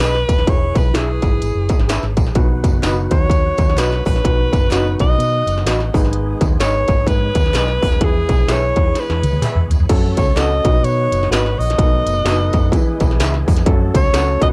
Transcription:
Already playing: B4
0.00 B1 G#4 B4 D#5, snare, clap, closed hi-hat, tambourine
0.15 snare
0.29 D#1, kick, closed hi-hat, tambourine
0.38 snare
0.47 E1 E3 E4 G#4 B4 C#5, kick, closed hi-hat, tambourine
0.75 B1 B4, kick, closed hi-hat, tambourine
0.93 B1 E4 G#4 B4 E5, snare, clap, closed hi-hat, tambourine
1.22 G#1, kick, closed hi-hat, tambourine
1.42 G#1, closed hi-hat, tambourine
1.55 F#1
1.69 kick, closed hi-hat, tambourine
1.79 G#1, snare
1.88 G#4 B4 E5, snare, clap, closed hi-hat, tambourine
2.03 G#1, snare
2.17 A#1, kick, closed hi-hat, tambourine
2.27 snare
2.35 B1 B2 D#3 F#3 B3 D#4 F#4 B4, kick, closed hi-hat, tambourine
2.64 F#1, kick, closed hi-hat, tambourine
2.82 F#1 D#4 F#4 B4 D#5, snare, clap, closed hi-hat, tambourine
3.11 D#2 C#5, kick, closed hi-hat, tambourine
3.30 kick, closed hi-hat, tambourine
3.57 D#2, kick, closed hi-hat, tambourine
3.70 snare
3.76 B1 F#4 B4 D#5, snare, clap, closed hi-hat, tambourine
3.92 snare
4.05 A#1 B4, kick, open hi-hat, tambourine
4.16 snare
4.24 B1 B2 D#4 F#4 B4, kick, closed hi-hat, tambourine
4.52 F#1, kick, closed hi-hat, tambourine
4.71 F#1 C#4 F#4 B4 D#5, snare, clap, closed hi-hat, tambourine
4.76 D#4
4.99 B1 D#5, kick, closed hi-hat, tambourine
5.18 B2, closed hi-hat, tambourine
5.46 F#1, closed hi-hat, tambourine
5.58 snare
5.66 A1 F#4 B4 D#5, snare, clap, closed hi-hat, tambourine
5.80 snare
5.93 G#1 G#2 D#3 G#3 D#4 G#4 B4, kick, open hi-hat, tambourine
6.05 snare
6.13 closed hi-hat
6.41 D#2, kick, closed hi-hat, tambourine
6.59 G#1 D#4 G#4 B4 C#5 D#5, snare, clap, closed hi-hat, tambourine
6.88 G#1, kick, closed hi-hat, tambourine
7.07 G#2 B4, kick, closed hi-hat, tambourine
7.35 D#2, kick, closed hi-hat, tambourine
7.46 snare
7.53 B1 G#4 B4 D#5, snare, clap, closed hi-hat, tambourine
7.68 snare
7.82 D#1, kick, open hi-hat, tambourine
7.92 snare
8.01 E2 E3 G#3 E4 G#4 B4, kick, closed hi-hat
8.29 B1, kick, closed hi-hat, tambourine
8.48 B1 E4 G#4 A4 B4 E5, snare, clap, closed hi-hat, tambourine
8.52 B4 C#5
8.76 E2, kick, closed hi-hat
8.95 snare, closed hi-hat, tambourine
9.00 B4
9.10 E2, snare
9.23 C#2, closed hi-hat, high tom, tambourine
9.33 D#2, high tom
9.42 G#4 B4 E5, clap, closed hi-hat, mid tom, tambourine
9.55 E2, mid tom
9.70 E2, closed hi-hat, floor tom, tambourine
9.79 F2, floor tom
9.89 F#2 F#3 A3 C#4 F#4 A4, kick, closed hi-hat, crash, tambourine
10.17 C#2 C#5, kick, closed hi-hat, tambourine
10.36 C#2 C#4 F#4 A4 C#5 D#5 F#5, snare, clap, closed hi-hat, tambourine
10.65 B1 B2 D#3 B3 D#4 F#4 B4, kick, closed hi-hat, tambourine
10.83 B2 C#5, closed hi-hat, tambourine
11.12 F#1, closed hi-hat, tambourine
11.23 snare
11.31 G#1 F#4 B4 D#5, snare, clap, closed hi-hat, tambourine
11.46 snare
11.59 A#1 D#5, open hi-hat, tambourine
11.70 snare, closed hi-hat
11.78 B1 B2 A3 D#4 A4 B4, kick, closed hi-hat, tambourine
12.06 F#1, closed hi-hat, tambourine
12.25 F#1 D#4 F#4 A4 B4 D#5, snare, clap, closed hi-hat, tambourine
12.53 F#2, kick, closed hi-hat, tambourine
12.72 E3 G#3 E4 G#4 B4, kick, closed hi-hat, tambourine
13.00 B1, kick, closed hi-hat, tambourine
13.11 snare
13.19 C#2 G#4 B4 E5, snare, clap, closed hi-hat, tambourine
13.34 snare
13.48 F2, kick, open hi-hat, tambourine
13.56 snare, closed hi-hat
13.65 F#2 A3 C#4 F#4 A4, kick, closed hi-hat
13.70 F#3 C#4 A4
13.94 C#2 C#5, kick, closed hi-hat, tambourine
14.12 C#2 C#4 F#4 A4 C#5 F#5, snare, clap, closed hi-hat, tambourine
14.41 B1 B2 D#3 F#3 B3 C#4 F#4 B4 D#5, kick, closed hi-hat
14.47 D#4

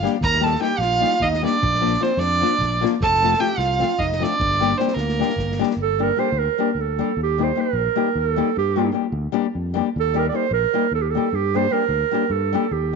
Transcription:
0.03 G3 A#3 D4 G4, snare
0.21 D#2 A#4 A#5, kick
0.35 snare
0.41 G3 A#3 D#4 G4 A5
0.46 A4, snare
0.55 snare
0.60 G3 A#3 D#4 G4 G5, snare
0.78 A#1 F4 F5, snare
1.00 G3 A#3 D#4 G4
1.05 snare
1.20 D#2 D#4 D#5, kick, snare
1.34 snare
1.42 G3 A#3 D4 D#4 G4 D5, snare
1.62 A#1, kick
1.75 snare
1.81 F3 A#3 D4 F4
1.85 snare
1.94 snare
2.00 F3 A#3 C4 D4 F4 C5, snare
2.17 F2 D4 D5, snare
2.41 F3 A#3 D4 F4, snare
2.58 A#1, kick
2.63 snare
2.81 F3 A#3 D4 F4
2.85 snare
3.00 F1 A4 A5, kick
3.14 snare
3.22 F3 A3 C4 F4, snare
3.33 snare
3.38 F3 A3 C4 F4 G4 G5, snare
3.58 C2 F4 F5, snare
3.79 F3 A3 C4 F4, snare
3.98 F1 D#4 D#5, kick, snare
4.12 snare
4.20 F3 A3 C4 D4 F4 D5
4.24 snare
4.39 G1, kick
4.51 snare
4.60 G3 A#3 D4 G4, snare
4.77 G3 A#3 C4 D4 G4 C5, snare
4.88 snare
4.94 D2 A#4, snare
4.99 A#3
5.09 snare
5.19 G3 A#3 D4 G4, snare
5.30 snare
5.36 G1, kick, snare
5.52 snare
5.59 G3 A#3 D4 G4, snare
5.71 snare
5.76 G1
5.82 A4
5.99 G3 A#3 D4 G4
6.03 A#4
6.17 G3 A#3 D4 G4 C5
6.32 D2
6.39 A#4
6.58 G3 A#3 D4 G4
6.72 D2 A#4
6.81 A4
6.98 G3 A#3 D4 G4
7.17 D#2
7.23 G4
7.38 G3 A#3 D#4 G4
7.44 C5
7.55 G3 A#3 D#4 G4
7.61 A#4
7.73 A#1
7.96 G3 A#3 D#4 G4
8.15 D#2 A4
8.36 G3 A#3 D#4 G4
8.57 G2 G4
8.76 G3 A#3 D4 G4
8.92 G3 A#3 D4 G4
9.12 D2
9.32 G3 A#3 D4 G4
9.55 F2
9.74 G3 A#3 D4 G4
9.96 D#2
10.00 A4
10.14 G3 A#3 D#4 G4
10.19 A#4
10.29 G3 D5
10.34 A#3 D#4 G4 C5
10.51 A#1 A#4
10.73 G3 A#3 D#4 G4
10.91 D#2 A4
11.02 G4
11.11 A4
11.15 G3 A#3 D#4 G4
11.33 G2 G4
11.54 G3 A#3 D4 G4 C5
11.71 G3 A#3 D4 G4 A#4
11.89 D2
12.11 G3 A#3 D4 G4
12.30 G2 A4
12.53 G3 A#3 D4 G4
12.71 D#2 G4

